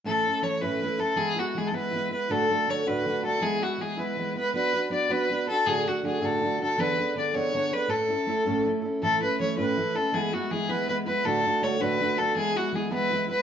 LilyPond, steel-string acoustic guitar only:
\new Staff \with { instrumentName = "Steel-string acoustic guitar" } { \time 6/8 \key a \major \tempo 4. = 107 <a, e a cis' e'>8 <a cis' e'>8 <e a cis' e'>8 <a, e a cis' e'>8 <e a cis' e'>8 <a cis' e'>8 | <e gis b e'>8 <gis b e'>8 <e gis b e'>8 <e gis b e'>8 <e gis b e'>8 <gis b e'>8 | <d, a, d a d' fis'>8 <d a d' fis'>8 <d a d' fis'>8 <d, a, d a d' fis'>8 <d a d' fis'>8 <d a d' fis'>8 | <e gis b e'>8 <gis b e'>8 <e gis b e'>8 <e gis b e'>8 <e gis b e'>8 <gis b e'>8 |
<b d' fis' b'>8 <d' fis' b'>8 <b d' fis' b'>8 <b d' fis' b'>8 <b d' fis' b'>8 <d' fis' b'>8 | <d, a, d a d' fis'>8 <d a d' fis'>8 <d a d' fis'>8 <d, a, d a d' fis'>8 <d a d' fis'>8 <d a d' fis'>8 | <d e b d' gis'>8 <b d' gis'>8 <d b d' gis'>8 <d e b d' gis'>8 <d b d' gis'>8 <b d' gis'>8 | <a, a cis' e' a'>8 <cis' e' a'>8 <a cis' e' a'>8 <a, a cis' e' a'>8 <a cis' e' a'>8 <cis' e' a'>8 |
<a, e a cis' e'>8 <a cis' e'>8 <e a cis' e'>8 <a, e a cis' e'>8 <e a cis' e'>8 <a cis' e'>8 | <e gis b e'>8 <gis b e'>8 <e gis b e'>8 <e gis b e'>8 <e gis b e'>8 <gis b e'>8 | <d, a, d a d' fis'>8 <d a d' fis'>8 <d a d' fis'>8 <d, a, d a d' fis'>8 <d a d' fis'>8 <d a d' fis'>8 | <e gis b e'>8 <gis b e'>8 <e gis b e'>8 <e gis b e'>8 <e gis b e'>8 <gis b e'>8 | }